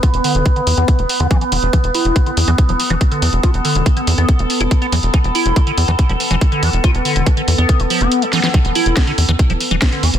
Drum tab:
HH |xxoxxxoxxxoxxxox|xxoxxxoxxxoxxxox|xxoxxxoxxxoxxxox|xxoxxxoxxxoxxxox|
SD |----------------|----------------|----------------|----------------|
BD |o---o---o---o---|o---o---o---o---|o---o---o---o---|o---o---o---o---|

HH |xxoxxxoxxxoxxxox|xxoxxxoxxxoxxxox|
SD |--------------oo|----o-------o---|
BD |o---o---o-------|o---o---o---o---|